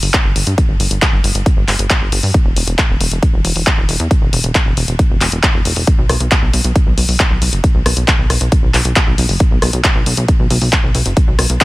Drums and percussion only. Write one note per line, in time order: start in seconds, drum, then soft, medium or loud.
0.03 open hi-hat medium
0.14 kick loud
0.14 clap loud
0.36 open hi-hat loud
0.47 closed hi-hat medium
0.58 kick loud
0.58 closed hi-hat medium
0.80 open hi-hat loud
0.91 closed hi-hat medium
1.02 kick loud
1.02 clap loud
1.02 closed hi-hat medium
1.24 open hi-hat loud
1.35 closed hi-hat medium
1.46 kick loud
1.46 closed hi-hat medium
1.68 clap medium
1.68 open hi-hat loud
1.79 closed hi-hat medium
1.90 kick loud
1.90 clap loud
1.90 closed hi-hat medium
2.12 open hi-hat loud
2.23 open hi-hat medium
2.34 kick loud
2.34 closed hi-hat medium
2.56 open hi-hat loud
2.67 closed hi-hat medium
2.78 kick loud
2.78 clap loud
2.78 closed hi-hat medium
3.01 open hi-hat loud
3.12 closed hi-hat medium
3.23 kick loud
3.23 closed hi-hat medium
3.45 open hi-hat loud
3.56 open hi-hat medium
3.67 kick loud
3.67 clap loud
3.67 closed hi-hat medium
3.89 open hi-hat loud
4.00 closed hi-hat medium
4.11 kick loud
4.11 closed hi-hat medium
4.33 open hi-hat loud
4.44 closed hi-hat medium
4.55 kick loud
4.55 clap loud
4.55 closed hi-hat medium
4.77 open hi-hat loud
4.88 closed hi-hat medium
4.99 kick loud
4.99 closed hi-hat medium
5.21 clap medium
5.21 open hi-hat loud
5.32 closed hi-hat medium
5.43 kick loud
5.43 clap loud
5.43 closed hi-hat medium
5.65 open hi-hat loud
5.76 open hi-hat medium
5.87 kick loud
5.87 closed hi-hat medium
6.09 cross-stick medium
6.09 open hi-hat loud
6.20 closed hi-hat medium
6.31 kick loud
6.31 clap loud
6.31 closed hi-hat medium
6.53 open hi-hat loud
6.64 closed hi-hat medium
6.76 kick loud
6.76 closed hi-hat medium
6.98 open hi-hat loud
7.09 open hi-hat medium
7.20 kick loud
7.20 clap loud
7.20 closed hi-hat medium
7.42 open hi-hat loud
7.53 closed hi-hat medium
7.64 kick loud
7.64 closed hi-hat medium
7.86 cross-stick medium
7.86 open hi-hat loud
7.97 closed hi-hat medium
8.08 kick loud
8.08 clap loud
8.08 closed hi-hat medium
8.30 cross-stick medium
8.30 open hi-hat loud
8.41 closed hi-hat medium
8.52 kick loud
8.52 closed hi-hat medium
8.74 clap medium
8.74 open hi-hat loud
8.85 closed hi-hat medium
8.96 kick loud
8.96 clap loud
8.96 closed hi-hat medium
9.18 open hi-hat loud
9.29 open hi-hat medium
9.40 kick loud
9.40 closed hi-hat medium
9.62 cross-stick medium
9.62 open hi-hat medium
9.73 closed hi-hat medium
9.84 kick loud
9.84 clap loud
9.84 closed hi-hat medium
10.06 open hi-hat loud
10.17 closed hi-hat medium
10.28 kick loud
10.28 closed hi-hat medium
10.50 open hi-hat loud
10.62 open hi-hat medium
10.73 kick loud
10.73 clap loud
10.73 closed hi-hat medium
10.95 open hi-hat loud
11.06 closed hi-hat medium
11.17 kick loud
11.17 closed hi-hat medium
11.39 cross-stick medium
11.39 open hi-hat loud
11.50 closed hi-hat medium
11.61 kick loud
11.61 clap loud
11.61 closed hi-hat medium